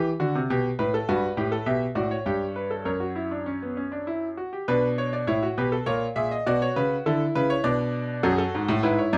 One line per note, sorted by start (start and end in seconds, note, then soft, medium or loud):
0.20 0.34 D3 medium
0.20 0.38 F#4 medium
0.35 0.49 C3 medium
0.50 0.68 B2 medium
0.50 0.68 G4 medium
0.79 0.97 A2 medium
0.79 0.93 B4 medium
0.94 1.08 A4 medium
1.09 1.26 G2 medium
1.09 1.27 F#4 medium
1.09 1.65 B4 medium
1.37 1.55 A2 medium
1.37 1.51 G4 medium
1.52 1.66 A4 medium
1.66 1.85 B2 medium
1.66 1.85 G4 medium
1.66 1.85 E5 medium
1.95 2.14 A2 medium
1.95 2.14 F#4 medium
1.95 2.10 D5 medium
2.11 2.83 C#5 medium
2.26 2.84 G2 medium
2.26 2.44 G4 medium
2.56 2.70 B4 medium
2.71 2.85 A4 medium
2.85 4.34 F#2 medium
2.85 3.00 A#4 medium
2.85 4.34 C#5 medium
3.00 3.15 F#4 medium
3.16 3.31 E4 medium
3.31 3.46 D4 medium
3.46 3.61 C#4 medium
3.62 3.77 B3 medium
3.77 3.92 C#4 soft
3.92 4.07 D4 medium
4.07 4.26 E4 medium
4.37 4.52 F#4 medium
4.53 4.68 G4 medium
4.68 5.27 B2 medium
4.68 5.27 D4 medium
4.68 4.87 B4 loud
4.98 5.13 C#5 medium
5.13 5.28 D5 medium
5.27 5.46 A2 medium
5.27 5.42 E4 medium
5.27 5.46 C#5 medium
5.43 5.58 F#4 medium
5.58 5.76 B2 medium
5.58 5.72 G4 medium
5.58 5.76 B4 medium
5.72 5.87 A4 medium
5.86 6.05 A#2 medium
5.86 6.05 A#4 medium
5.86 6.05 C#5 loud
6.16 6.35 A#2 medium
6.16 6.35 G#4 medium
6.16 6.31 E5 medium
6.31 6.46 D#5 medium
6.46 6.65 B2 medium
6.46 7.04 F#4 medium
6.46 6.61 D5 loud
6.62 6.76 C#5 medium
6.76 6.95 C#3 medium
6.76 6.95 B4 medium
7.06 7.24 D3 medium
7.06 7.63 E4 medium
7.06 7.24 A4 medium
7.35 7.54 C#3 medium
7.35 7.50 B4 medium
7.50 7.64 C#5 loud
7.64 8.22 B2 medium
7.64 8.22 D4 medium
7.64 8.22 D5 loud
8.23 8.42 F#2 loud
8.23 8.81 F#4 medium
8.23 8.30 A4 medium
8.31 8.38 G#4 medium
8.38 8.82 A4 medium
8.54 8.69 G#2 medium
8.68 8.83 A2 loud
8.83 9.02 G#2 medium
8.83 9.18 E4 medium
8.83 8.98 B4 medium
8.98 9.12 C#5 medium
9.13 9.18 F#2 loud
9.13 9.18 D5 medium